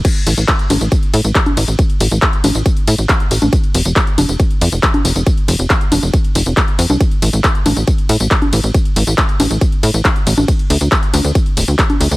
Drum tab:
CC |x---------------|----------------|----------------|----------------|
RD |x-x-x-x-x-x-x-x-|x-x-x-x-x-x-x-x-|x-x-x-x-x-x-x-x-|x-x-x-x-x-x-x-x-|
HH |xxo-xxoxxxoxxxox|xxoxxxoxxxoxxxo-|xxoxxxoxxxo-xxo-|xxoxxxoxxxo-xxox|
TB |x-xxx-xxx-xxx-xx|x-xxx-xxx-xxx-xx|x-xxx-xxx-xxx-xx|x-xxx-xxx-xxx-xx|
CP |----x-------x---|----x-------x---|----x-------x---|----x-------x---|
CG |------o------o--|------o--------o|------o------o--|------o--------o|
BD |o---o---o---o---|o---o---o---o---|o---o---o---o---|o---o---o---o---|

CC |----------------|----------------|----------------|
RD |x-x-x-x-x-x-x-x-|x-x-x-x-x-x-x-x-|x-x-x-x-x-x-x-x-|
HH |xxoxxxoxxxo-xxox|xxoxxxoxxxo-xxox|xxoxxxo-xxoxxxox|
TB |x-xxx-xxx-xxx-xx|x-xxx-xxx-xxx-xx|x-xxx-xxx-xxx-xx|
CP |----x-------x---|----x-------x---|----x-------x---|
CG |------o------o--|------o--------o|------o------o--|
BD |o---o---o---o---|o---o---o---o---|o---o---o---o---|